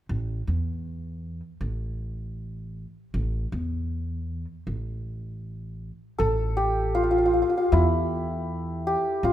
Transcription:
0.09 A1
0.47 E2
1.61 A1
3.14 A1
3.52 E2
4.67 A1
6.18 A1 A4
6.57 G4
6.95 F4
7.03 F4
7.11 F4
7.18 F4
7.26 F4
7.34 F4
7.42 F4
7.50 F4
7.57 F4
7.72 E2 E4
8.87 G4
9.23 A1 F4

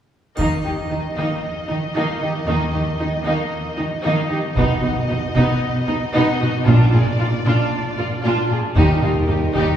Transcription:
0.37 D#2 D#3 A#3 D#4 D#5, taiko, triangle
0.64 D#3 D#4 G4
0.90 D#3 D#4
1.15 D#3 A#3 D#4
1.68 D#3 D#4
1.93 D#3 A#3 D#4
2.20 D#3 D#4 G4
2.46 D#2 D#3 A#3 D#4
2.73 D#3 D#4 G4
2.98 D#3 D#4
3.25 D#3 A#3 D#4
3.77 D#3 D#4
4.04 D#3 A#3 D#4
4.30 D#3 D#4 G4
4.55 B1 B2 B3 D#4 D#5, taiko
4.83 B2 D#4 F#4
5.09 B2 D#4
5.34 B2 B3 D#4, taiko
5.87 B2 D#4
6.14 B2 B3 D#4
6.40 B2 D#4 F#4
6.66 A#1 A#2 D4 F4 D5
6.92 A#2 F4 G#4
7.19 A#2 F4
7.45 A#2 D4 F4
7.97 A#2 F4
8.23 A#2 D4 F4
8.49 A#2 F4 G#4
8.75 D#2 G3 D#4 G4 A#4, taiko
9.01 D#2 D#4 F4
9.27 D#2 D#4 G4
9.53 D#2 D#4 G4, taiko

